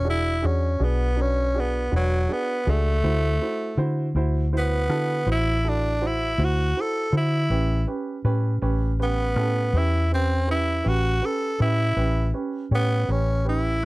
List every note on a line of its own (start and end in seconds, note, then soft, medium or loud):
0.00 0.44 E1 medium
0.04 0.33 D4 medium
0.04 0.33 F#4 medium
0.04 0.33 G#4 medium
0.10 0.48 E4 medium
0.42 0.78 E2 medium
0.42 0.85 C#4 medium
0.42 0.71 D4 medium
0.42 0.71 F#4 soft
0.42 0.71 G#4 medium
0.80 1.88 B1 medium
0.80 1.08 D4 medium
0.80 1.08 F#4 soft
0.80 1.08 G#4 medium
0.84 1.23 B3 medium
1.16 1.45 D4 medium
1.16 1.45 F#4 soft
1.16 1.45 B4 medium
1.21 1.61 C#4 medium
1.54 1.82 D4 medium
1.54 1.83 F#4 medium
1.54 1.83 G#4 medium
1.60 1.93 B3 medium
1.91 2.27 E1 medium
1.91 2.20 D4 medium
1.91 2.20 F#4 medium
1.91 2.20 B4 medium
1.96 2.34 F#3 medium
2.28 2.57 D4 soft
2.28 2.57 F#4 soft
2.28 2.57 G#4 medium
2.33 2.72 B3 medium
2.66 3.01 C#2 loud
2.66 4.13 A3 loud
2.66 2.94 D4 medium
2.66 2.94 F#4 medium
2.66 2.94 G#4 medium
3.04 3.38 D2 loud
3.04 3.32 E4 medium
3.04 3.32 F#4 soft
3.04 3.32 C5 medium
3.42 3.69 E4 soft
3.42 3.69 F#4 soft
3.42 3.69 C5 medium
3.78 4.12 D3 medium
3.78 4.06 E4 medium
3.78 4.06 F#4 medium
3.78 4.06 C5 medium
4.15 4.89 D2 medium
4.15 4.43 E4 medium
4.15 4.44 F#4 medium
4.15 4.44 C5 medium
4.53 4.80 E4 medium
4.53 4.80 F#4 soft
4.53 4.81 C5 medium
4.58 5.27 B3 loud
4.89 5.24 D3 medium
4.89 5.17 E4 medium
4.89 5.18 F#4 medium
4.89 5.18 A4 medium
5.26 6.34 A1 medium
5.26 5.54 E4 medium
5.26 5.55 F#4 medium
5.26 5.55 C5 medium
5.32 5.71 E4 medium
5.64 5.92 E4 medium
5.64 5.92 F#4 soft
5.64 5.92 A4 medium
5.69 6.08 D4 medium
6.02 6.29 E4 medium
6.02 6.29 F#4 medium
6.02 6.29 C5 medium
6.07 6.46 E4 medium
6.38 6.73 D2 medium
6.38 6.67 E4 medium
6.38 6.67 F#4 medium
6.38 6.67 C5 medium
6.45 6.82 F#4 medium
6.76 7.04 E4 soft
6.76 7.04 F#4 soft
6.76 7.04 C5 medium
6.81 7.14 A4 medium
7.12 7.47 D3 medium
7.12 7.41 E4 medium
7.12 7.41 F#4 medium
7.12 7.41 C5 medium
7.17 7.87 E4 medium
7.50 7.84 A1 loud
7.50 7.78 C#4 medium
7.50 7.78 G4 medium
7.50 7.78 B4 medium
7.87 8.15 C#4 medium
7.87 8.15 G4 soft
7.87 8.16 B4 medium
8.25 8.59 A2 medium
8.25 8.53 C#4 medium
8.25 8.53 G4 medium
8.25 8.53 B4 medium
8.62 9.36 A1 medium
8.62 8.90 C#4 medium
8.62 8.90 G4 medium
8.62 8.90 B4 medium
8.99 9.79 B3 loud
8.99 9.27 C#4 medium
8.99 9.27 G4 medium
8.99 9.27 B4 medium
9.36 9.71 A2 medium
9.36 9.65 C#4 medium
9.36 9.65 G4 medium
9.36 9.65 A4 medium
9.73 10.81 E2 medium
9.73 10.02 C#4 medium
9.73 10.02 G4 medium
9.73 10.02 B4 medium
9.78 10.12 E4 medium
10.11 10.49 C4 medium
10.11 10.39 C#4 medium
10.11 10.39 G4 medium
10.11 10.39 B4 medium
10.47 10.76 C#4 medium
10.47 10.76 G4 soft
10.47 10.76 B4 medium
10.51 10.90 E4 medium
10.84 11.20 A1 medium
10.84 11.13 C#4 medium
10.84 11.13 G4 medium
10.84 11.13 B4 medium
10.88 11.27 F#4 medium
11.21 11.50 C#4 medium
11.21 11.50 G4 soft
11.21 11.50 B4 medium
11.26 11.60 A4 medium
11.59 11.94 A2 loud
11.59 11.88 C#4 medium
11.59 12.33 E4 loud
11.59 11.88 G4 medium
11.59 11.88 B4 medium
11.97 12.31 A1 loud
11.97 12.25 C#4 medium
11.97 12.25 G4 medium
11.97 12.25 B4 medium
12.34 12.62 C#4 medium
12.34 12.62 G4 soft
12.34 12.62 B4 medium
12.71 13.06 A2 loud
12.71 13.13 B3 loud
12.71 13.00 C#4 medium
12.71 13.00 G4 medium
12.71 13.00 C#5 medium
13.08 13.83 A1 medium
13.08 13.37 C#4 medium
13.08 13.47 C#4 medium
13.08 13.37 G4 medium
13.08 13.37 B4 medium
13.45 13.74 C#4 medium
13.45 13.74 G4 medium
13.45 13.74 B4 medium
13.49 13.85 E4 loud